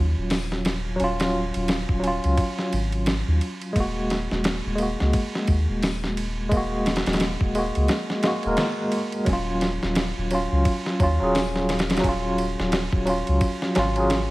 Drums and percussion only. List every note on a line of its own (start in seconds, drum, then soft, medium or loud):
0.30 snare loud
0.30 open hi-hat medium
0.52 snare soft
0.65 snare loud
0.65 ride medium
1.00 ride medium
1.20 snare loud
1.20 ride medium
1.54 ride medium
1.68 snare loud
1.68 ride medium
1.89 kick medium
2.04 ride medium
2.24 ride soft
2.37 kick loud
2.37 ride medium
2.59 snare soft
2.73 ride medium
2.92 ride soft
3.06 snare loud
3.06 ride medium
3.41 ride medium
3.61 ride soft
3.76 kick loud
3.76 ride medium
4.10 snare soft
4.10 ride medium
4.31 snare soft
4.44 snare loud
4.44 ride medium
4.78 ride medium
5.00 snare soft
5.13 kick loud
5.13 ride medium
5.35 snare soft
5.47 kick medium
5.47 ride medium
5.83 snare loud
5.83 open hi-hat medium
6.04 snare soft
6.17 ride medium
6.52 kick loud
6.52 ride medium
6.86 snare medium
6.86 ride medium
6.96 snare medium
6.96 ride medium
7.06 snare medium
7.06 ride medium
7.13 snare medium
7.13 ride medium
7.20 snare loud
7.20 ride medium
7.41 kick loud
7.55 ride medium
7.75 ride soft
7.88 snare loud
7.88 ride medium
8.10 snare soft
8.23 snare loud
8.23 ride medium
8.43 ride soft
8.57 snare loud
8.57 ride medium
8.92 ride medium
9.12 ride soft
9.26 kick loud
9.26 ride medium
9.61 snare medium
9.61 ride medium
9.83 snare soft
9.95 snare loud
9.95 ride medium
10.31 ride medium
10.65 kick loud
10.65 ride medium
10.86 snare soft
11.00 kick medium
11.00 ride medium
11.35 snare loud
11.35 open hi-hat medium
11.56 snare soft
11.69 snare medium
11.69 ride medium
11.79 snare medium
11.79 ride medium
11.90 snare loud
11.90 ride medium
11.97 snare medium
11.97 ride medium
12.04 kick loud
12.04 ride medium
12.38 ride medium
12.60 snare medium
12.72 snare loud
12.72 ride medium
12.93 kick loud
13.07 ride medium
13.27 ride soft
13.41 kick loud
13.41 ride medium
13.62 snare soft
13.75 snare loud
13.75 ride medium
13.96 ride soft
14.10 snare loud
14.10 ride medium